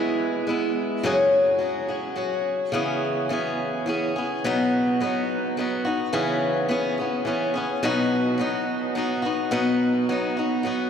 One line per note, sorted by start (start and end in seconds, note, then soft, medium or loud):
0.00 0.46 G#3 medium
0.00 0.48 B3 medium
0.00 0.48 E4 medium
0.00 0.50 G#4 medium
0.47 1.04 G#3 medium
0.47 1.05 B3 medium
0.47 1.05 E4 medium
0.47 1.06 G#4 medium
1.03 1.60 F#2 medium
1.03 1.61 C#3 medium
1.03 1.57 F#3 medium
1.03 1.59 C#4 medium
1.03 1.60 F#4 medium
1.03 1.61 G#4 medium
1.59 1.88 F#3 medium
1.59 1.89 C#4 medium
1.59 1.88 F#4 medium
1.63 1.87 G#4 medium
1.88 2.14 F#3 soft
1.88 2.15 C#4 soft
1.88 2.16 F#4 soft
1.88 2.17 G#4 soft
2.16 2.73 F#3 medium
2.16 2.73 C#4 medium
2.16 2.74 F#4 medium
2.16 2.73 G#4 medium
2.72 3.30 C#3 medium
2.72 3.28 E3 medium
2.72 3.30 B3 medium
2.72 3.30 C#4 medium
2.72 3.31 G#4 medium
3.29 3.85 E3 medium
3.29 3.87 B3 medium
3.29 3.88 C#4 medium
3.29 3.88 G#4 medium
3.86 4.15 E3 medium
3.86 4.16 B3 medium
3.86 4.16 C#4 medium
3.86 4.15 G#4 medium
4.16 4.44 B3 soft
4.16 4.45 C#4 soft
4.16 4.44 G#4 medium
4.44 5.01 B2 medium
4.44 4.99 F#3 medium
4.44 5.01 B3 medium
4.44 5.01 D#4 medium
4.44 5.02 F#4 loud
5.00 5.56 F#3 medium
5.00 5.58 B3 medium
5.00 5.58 D#4 medium
5.00 5.58 F#4 medium
5.57 5.85 F#3 medium
5.57 5.86 B3 medium
5.57 5.85 D#4 medium
5.57 5.84 F#4 medium
5.85 6.12 B3 soft
5.85 6.13 D#4 soft
5.85 6.13 F#4 medium
6.13 6.69 C#3 medium
6.13 6.67 E3 medium
6.13 6.69 B3 medium
6.13 6.69 C#4 medium
6.13 6.70 G#4 medium
6.69 6.97 E3 medium
6.69 6.98 B3 medium
6.69 6.99 C#4 medium
6.69 6.97 G#4 medium
6.98 7.25 B3 soft
6.98 7.26 C#4 medium
6.98 7.26 G#4 soft
7.25 7.54 E3 medium
7.25 7.55 B3 medium
7.25 7.54 C#4 medium
7.25 7.53 G#4 medium
7.54 7.82 B3 soft
7.54 7.83 C#4 medium
7.54 7.82 G#4 medium
7.83 8.39 B2 medium
7.83 8.36 F#3 medium
7.83 8.38 B3 loud
7.83 8.39 D#4 medium
7.83 8.40 F#4 loud
8.38 8.94 F#3 medium
8.38 8.95 B3 medium
8.38 8.96 D#4 medium
8.38 8.97 F#4 medium
8.95 9.24 F#3 medium
8.95 9.24 B3 medium
8.95 9.24 D#4 medium
8.95 9.21 F#4 medium
9.22 9.51 B3 soft
9.22 9.52 D#4 soft
9.22 9.51 F#4 medium
9.51 10.08 B2 medium
9.51 10.09 F#3 medium
9.51 10.08 B3 loud
9.51 10.09 D#4 medium
9.51 10.12 F#4 loud
10.09 10.37 F#3 medium
10.09 10.37 B3 medium
10.09 10.37 D#4 medium
10.09 10.36 F#4 medium
10.37 10.63 B3 soft
10.37 10.64 D#4 medium
10.37 10.65 F#4 medium
10.63 10.90 F#3 medium
10.63 10.90 B3 medium
10.63 10.90 D#4 medium
10.63 10.90 F#4 medium